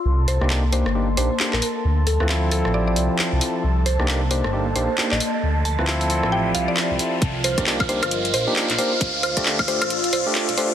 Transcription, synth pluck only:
X:1
M:4/4
L:1/16
Q:"Swing 16ths" 1/4=134
K:Dphr
V:1 name="Synth pluck"
z2 c z3 c z3 c z2 B B z | z2 A A z2 A2 d d z6 | z2 c z3 c z3 c z2 e z2 | z2 a z4 z g z f d4 z |
z2 c z3 c z3 c z3 c z | z2 c z3 c z3 c z3 c z |]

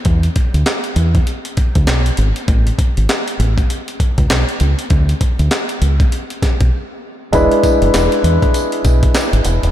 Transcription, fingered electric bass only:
X:1
M:4/4
L:1/16
Q:"Swing 16ths" 1/4=99
K:Emix
V:1 name="Fingered electric bass" clef=bass
E,,2 z D,, z2 E,,2 z3 D,, B,,,2 G,,, z | A,,,2 z G,,, z2 A,,,2 z3 C,, B,,, z C,, z | D,,2 z D,, z2 C,,2 z3 B,,, z4 | E,,, z2 F,,, E,,, z E,, z3 B,,,2 z G,,, E,,, ^D,,, |]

